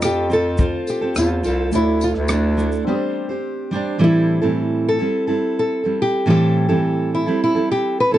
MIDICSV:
0, 0, Header, 1, 6, 480
1, 0, Start_track
1, 0, Key_signature, 0, "minor"
1, 0, Tempo, 567644
1, 1461, Time_signature, 4, 2, 24, 8
1, 6917, End_track
2, 0, Start_track
2, 0, Title_t, "Nylon-string guitar"
2, 0, Program_c, 0, 24
2, 41, Note_on_c, 0, 67, 101
2, 277, Note_off_c, 0, 67, 0
2, 281, Note_on_c, 0, 69, 101
2, 755, Note_off_c, 0, 69, 0
2, 758, Note_on_c, 0, 67, 86
2, 973, Note_off_c, 0, 67, 0
2, 999, Note_on_c, 0, 65, 99
2, 1438, Note_off_c, 0, 65, 0
2, 1481, Note_on_c, 0, 64, 99
2, 1719, Note_off_c, 0, 64, 0
2, 1723, Note_on_c, 0, 65, 91
2, 1785, Note_off_c, 0, 65, 0
2, 1961, Note_on_c, 0, 62, 86
2, 2439, Note_on_c, 0, 60, 68
2, 2447, Note_off_c, 0, 62, 0
2, 3118, Note_off_c, 0, 60, 0
2, 3176, Note_on_c, 0, 62, 76
2, 3407, Note_off_c, 0, 62, 0
2, 3414, Note_on_c, 0, 64, 97
2, 4131, Note_on_c, 0, 69, 100
2, 4140, Note_off_c, 0, 64, 0
2, 4683, Note_off_c, 0, 69, 0
2, 4729, Note_on_c, 0, 69, 86
2, 5086, Note_off_c, 0, 69, 0
2, 5089, Note_on_c, 0, 67, 102
2, 5318, Note_off_c, 0, 67, 0
2, 5328, Note_on_c, 0, 67, 109
2, 6001, Note_off_c, 0, 67, 0
2, 6042, Note_on_c, 0, 64, 90
2, 6256, Note_off_c, 0, 64, 0
2, 6288, Note_on_c, 0, 64, 97
2, 6499, Note_off_c, 0, 64, 0
2, 6524, Note_on_c, 0, 67, 93
2, 6759, Note_off_c, 0, 67, 0
2, 6768, Note_on_c, 0, 71, 114
2, 6878, Note_off_c, 0, 71, 0
2, 6882, Note_on_c, 0, 69, 103
2, 6917, Note_off_c, 0, 69, 0
2, 6917, End_track
3, 0, Start_track
3, 0, Title_t, "Upright piano"
3, 0, Program_c, 1, 0
3, 0, Control_c, 1, 64, 127
3, 0, Note_on_c, 1, 57, 60
3, 0, Note_on_c, 1, 62, 53
3, 0, Note_on_c, 1, 65, 57
3, 0, Note_on_c, 1, 72, 56
3, 1418, Note_off_c, 1, 57, 0
3, 1422, Note_off_c, 1, 62, 0
3, 1430, Note_off_c, 1, 65, 0
3, 1435, Note_off_c, 1, 72, 0
3, 1448, Note_on_c, 1, 57, 53
3, 1463, Note_on_c, 1, 64, 51
3, 1472, Control_c, 1, 64, 0
3, 1472, Note_on_c, 1, 65, 50
3, 1481, Note_on_c, 1, 73, 52
3, 1526, Note_off_c, 1, 73, 0
3, 1538, Note_on_c, 1, 74, 61
3, 1628, Control_c, 1, 64, 127
3, 2397, Note_off_c, 1, 57, 0
3, 2405, Note_off_c, 1, 64, 0
3, 2407, Note_on_c, 1, 60, 62
3, 2409, Note_off_c, 1, 65, 0
3, 2421, Note_on_c, 1, 62, 53
3, 2431, Note_off_c, 1, 74, 0
3, 2431, Note_on_c, 1, 67, 52
3, 2433, Control_c, 1, 64, 0
3, 2444, Note_on_c, 1, 74, 59
3, 2592, Control_c, 1, 64, 127
3, 3357, Note_off_c, 1, 60, 0
3, 3364, Note_off_c, 1, 62, 0
3, 3369, Note_off_c, 1, 67, 0
3, 3375, Note_off_c, 1, 74, 0
3, 3393, Control_c, 1, 64, 0
3, 6917, End_track
4, 0, Start_track
4, 0, Title_t, "Steel-string acoustic guitar"
4, 0, Program_c, 2, 25
4, 11, Note_on_c, 2, 60, 50
4, 20, Note_on_c, 2, 65, 60
4, 27, Note_on_c, 2, 72, 55
4, 32, Note_on_c, 2, 69, 66
4, 241, Note_off_c, 2, 60, 0
4, 251, Note_off_c, 2, 65, 0
4, 251, Note_on_c, 2, 60, 63
4, 255, Note_off_c, 2, 72, 0
4, 261, Note_on_c, 2, 65, 56
4, 262, Note_off_c, 2, 69, 0
4, 265, Note_on_c, 2, 72, 68
4, 273, Note_on_c, 2, 69, 67
4, 482, Note_off_c, 2, 60, 0
4, 492, Note_on_c, 2, 60, 65
4, 495, Note_off_c, 2, 65, 0
4, 499, Note_off_c, 2, 72, 0
4, 503, Note_off_c, 2, 69, 0
4, 505, Note_on_c, 2, 65, 73
4, 510, Note_on_c, 2, 72, 65
4, 513, Note_on_c, 2, 69, 70
4, 843, Note_off_c, 2, 69, 0
4, 854, Note_off_c, 2, 72, 0
4, 854, Note_on_c, 2, 69, 53
4, 856, Note_off_c, 2, 60, 0
4, 863, Note_off_c, 2, 65, 0
4, 864, Note_on_c, 2, 72, 52
4, 872, Note_on_c, 2, 65, 44
4, 878, Note_on_c, 2, 60, 41
4, 1201, Note_off_c, 2, 60, 0
4, 1210, Note_off_c, 2, 65, 0
4, 1211, Note_on_c, 2, 60, 62
4, 1218, Note_off_c, 2, 69, 0
4, 1218, Note_off_c, 2, 72, 0
4, 1220, Note_on_c, 2, 65, 61
4, 1228, Note_on_c, 2, 72, 64
4, 1231, Note_on_c, 2, 69, 71
4, 1449, Note_off_c, 2, 60, 0
4, 1453, Note_on_c, 2, 57, 51
4, 1459, Note_off_c, 2, 65, 0
4, 1461, Note_off_c, 2, 69, 0
4, 1462, Note_on_c, 2, 62, 50
4, 1463, Note_off_c, 2, 72, 0
4, 1466, Note_on_c, 2, 64, 64
4, 1471, Note_on_c, 2, 69, 62
4, 1928, Note_off_c, 2, 57, 0
4, 1936, Note_off_c, 2, 62, 0
4, 1938, Note_on_c, 2, 57, 49
4, 1940, Note_off_c, 2, 64, 0
4, 1946, Note_on_c, 2, 62, 53
4, 1947, Note_off_c, 2, 69, 0
4, 1951, Note_on_c, 2, 64, 60
4, 1957, Note_on_c, 2, 69, 58
4, 2164, Note_off_c, 2, 57, 0
4, 2168, Note_off_c, 2, 62, 0
4, 2174, Note_on_c, 2, 57, 67
4, 2176, Note_off_c, 2, 64, 0
4, 2179, Note_on_c, 2, 62, 65
4, 2181, Note_off_c, 2, 69, 0
4, 2187, Note_on_c, 2, 64, 64
4, 2191, Note_on_c, 2, 69, 61
4, 2419, Note_off_c, 2, 57, 0
4, 2421, Note_off_c, 2, 62, 0
4, 2425, Note_off_c, 2, 64, 0
4, 2425, Note_on_c, 2, 55, 66
4, 2427, Note_off_c, 2, 69, 0
4, 2430, Note_on_c, 2, 62, 64
4, 2434, Note_on_c, 2, 67, 67
4, 2442, Note_on_c, 2, 72, 71
4, 2772, Note_off_c, 2, 72, 0
4, 2782, Note_on_c, 2, 72, 49
4, 2784, Note_off_c, 2, 55, 0
4, 2784, Note_off_c, 2, 67, 0
4, 2787, Note_off_c, 2, 62, 0
4, 2794, Note_on_c, 2, 67, 48
4, 2803, Note_on_c, 2, 62, 46
4, 3137, Note_on_c, 2, 55, 74
4, 3138, Note_off_c, 2, 62, 0
4, 3143, Note_off_c, 2, 72, 0
4, 3145, Note_off_c, 2, 67, 0
4, 3148, Note_on_c, 2, 62, 73
4, 3155, Note_on_c, 2, 67, 78
4, 3163, Note_on_c, 2, 72, 77
4, 3367, Note_off_c, 2, 55, 0
4, 3369, Note_on_c, 2, 45, 70
4, 3374, Note_on_c, 2, 52, 83
4, 3376, Note_off_c, 2, 62, 0
4, 3377, Note_on_c, 2, 55, 86
4, 3379, Note_on_c, 2, 60, 75
4, 3382, Note_off_c, 2, 67, 0
4, 3383, Note_off_c, 2, 72, 0
4, 3386, Note_on_c, 2, 64, 83
4, 3386, Note_on_c, 2, 69, 85
4, 3723, Note_off_c, 2, 69, 0
4, 3730, Note_off_c, 2, 64, 0
4, 3733, Note_on_c, 2, 69, 66
4, 3734, Note_off_c, 2, 55, 0
4, 3734, Note_off_c, 2, 60, 0
4, 3735, Note_off_c, 2, 52, 0
4, 3736, Note_off_c, 2, 45, 0
4, 3740, Note_on_c, 2, 64, 65
4, 3744, Note_on_c, 2, 55, 62
4, 3744, Note_on_c, 2, 60, 61
4, 3745, Note_on_c, 2, 52, 65
4, 3750, Note_on_c, 2, 45, 62
4, 4214, Note_off_c, 2, 69, 0
4, 4215, Note_off_c, 2, 64, 0
4, 4217, Note_on_c, 2, 69, 52
4, 4224, Note_off_c, 2, 52, 0
4, 4224, Note_off_c, 2, 55, 0
4, 4225, Note_on_c, 2, 64, 57
4, 4227, Note_off_c, 2, 45, 0
4, 4229, Note_off_c, 2, 60, 0
4, 4232, Note_on_c, 2, 60, 48
4, 4238, Note_on_c, 2, 55, 55
4, 4448, Note_off_c, 2, 69, 0
4, 4454, Note_off_c, 2, 64, 0
4, 4458, Note_on_c, 2, 69, 61
4, 4462, Note_off_c, 2, 60, 0
4, 4465, Note_on_c, 2, 64, 53
4, 4471, Note_off_c, 2, 55, 0
4, 4472, Note_on_c, 2, 60, 55
4, 4481, Note_on_c, 2, 55, 41
4, 4931, Note_off_c, 2, 69, 0
4, 4934, Note_off_c, 2, 64, 0
4, 4934, Note_on_c, 2, 69, 52
4, 4943, Note_off_c, 2, 55, 0
4, 4944, Note_off_c, 2, 60, 0
4, 4944, Note_on_c, 2, 64, 47
4, 4947, Note_on_c, 2, 60, 43
4, 4953, Note_on_c, 2, 55, 48
4, 5290, Note_off_c, 2, 55, 0
4, 5292, Note_on_c, 2, 45, 85
4, 5293, Note_off_c, 2, 60, 0
4, 5294, Note_off_c, 2, 64, 0
4, 5296, Note_off_c, 2, 69, 0
4, 5298, Note_on_c, 2, 52, 86
4, 5301, Note_on_c, 2, 55, 75
4, 5303, Note_on_c, 2, 60, 84
4, 5304, Note_on_c, 2, 64, 83
4, 5307, Note_on_c, 2, 69, 87
4, 5643, Note_off_c, 2, 69, 0
4, 5645, Note_off_c, 2, 64, 0
4, 5646, Note_off_c, 2, 60, 0
4, 5652, Note_off_c, 2, 55, 0
4, 5653, Note_on_c, 2, 69, 67
4, 5654, Note_off_c, 2, 52, 0
4, 5655, Note_on_c, 2, 64, 71
4, 5657, Note_off_c, 2, 45, 0
4, 5657, Note_on_c, 2, 60, 64
4, 5662, Note_on_c, 2, 55, 68
4, 5664, Note_on_c, 2, 52, 53
4, 5669, Note_on_c, 2, 45, 58
4, 6136, Note_off_c, 2, 69, 0
4, 6139, Note_off_c, 2, 64, 0
4, 6139, Note_on_c, 2, 69, 54
4, 6142, Note_off_c, 2, 55, 0
4, 6143, Note_off_c, 2, 52, 0
4, 6145, Note_off_c, 2, 45, 0
4, 6152, Note_on_c, 2, 64, 63
4, 6154, Note_off_c, 2, 60, 0
4, 6158, Note_on_c, 2, 60, 57
4, 6162, Note_on_c, 2, 55, 57
4, 6372, Note_off_c, 2, 69, 0
4, 6379, Note_off_c, 2, 64, 0
4, 6382, Note_on_c, 2, 69, 55
4, 6387, Note_off_c, 2, 60, 0
4, 6390, Note_on_c, 2, 64, 55
4, 6392, Note_off_c, 2, 55, 0
4, 6398, Note_on_c, 2, 60, 49
4, 6403, Note_on_c, 2, 55, 48
4, 6855, Note_off_c, 2, 64, 0
4, 6857, Note_off_c, 2, 69, 0
4, 6860, Note_on_c, 2, 69, 59
4, 6865, Note_on_c, 2, 64, 51
4, 6871, Note_off_c, 2, 60, 0
4, 6872, Note_off_c, 2, 55, 0
4, 6875, Note_on_c, 2, 60, 48
4, 6882, Note_on_c, 2, 55, 45
4, 6917, Note_off_c, 2, 55, 0
4, 6917, Note_off_c, 2, 60, 0
4, 6917, Note_off_c, 2, 64, 0
4, 6917, Note_off_c, 2, 69, 0
4, 6917, End_track
5, 0, Start_track
5, 0, Title_t, "Bass clarinet"
5, 0, Program_c, 3, 71
5, 0, Note_on_c, 3, 41, 93
5, 721, Note_off_c, 3, 41, 0
5, 982, Note_on_c, 3, 40, 91
5, 1202, Note_off_c, 3, 40, 0
5, 1225, Note_on_c, 3, 36, 91
5, 1444, Note_off_c, 3, 36, 0
5, 1458, Note_on_c, 3, 38, 88
5, 1792, Note_off_c, 3, 38, 0
5, 1818, Note_on_c, 3, 38, 95
5, 2391, Note_off_c, 3, 38, 0
5, 6917, End_track
6, 0, Start_track
6, 0, Title_t, "Drums"
6, 15, Note_on_c, 9, 82, 76
6, 16, Note_on_c, 9, 54, 80
6, 20, Note_on_c, 9, 37, 106
6, 99, Note_off_c, 9, 82, 0
6, 101, Note_off_c, 9, 54, 0
6, 105, Note_off_c, 9, 37, 0
6, 262, Note_on_c, 9, 82, 53
6, 347, Note_off_c, 9, 82, 0
6, 488, Note_on_c, 9, 82, 64
6, 499, Note_on_c, 9, 36, 76
6, 573, Note_off_c, 9, 82, 0
6, 583, Note_off_c, 9, 36, 0
6, 738, Note_on_c, 9, 54, 49
6, 739, Note_on_c, 9, 82, 46
6, 822, Note_off_c, 9, 54, 0
6, 824, Note_off_c, 9, 82, 0
6, 974, Note_on_c, 9, 82, 74
6, 981, Note_on_c, 9, 37, 97
6, 982, Note_on_c, 9, 54, 86
6, 1058, Note_off_c, 9, 82, 0
6, 1066, Note_off_c, 9, 37, 0
6, 1066, Note_off_c, 9, 54, 0
6, 1214, Note_on_c, 9, 82, 48
6, 1221, Note_on_c, 9, 54, 44
6, 1299, Note_off_c, 9, 82, 0
6, 1306, Note_off_c, 9, 54, 0
6, 1455, Note_on_c, 9, 82, 79
6, 1461, Note_on_c, 9, 54, 45
6, 1539, Note_off_c, 9, 82, 0
6, 1546, Note_off_c, 9, 54, 0
6, 1697, Note_on_c, 9, 82, 49
6, 1700, Note_on_c, 9, 54, 51
6, 1782, Note_off_c, 9, 82, 0
6, 1785, Note_off_c, 9, 54, 0
6, 1812, Note_on_c, 9, 37, 35
6, 1896, Note_off_c, 9, 37, 0
6, 1930, Note_on_c, 9, 54, 73
6, 1931, Note_on_c, 9, 82, 74
6, 1937, Note_on_c, 9, 37, 112
6, 2015, Note_off_c, 9, 54, 0
6, 2016, Note_off_c, 9, 82, 0
6, 2021, Note_off_c, 9, 37, 0
6, 2187, Note_on_c, 9, 82, 57
6, 2272, Note_off_c, 9, 82, 0
6, 2300, Note_on_c, 9, 82, 54
6, 2385, Note_off_c, 9, 82, 0
6, 6917, End_track
0, 0, End_of_file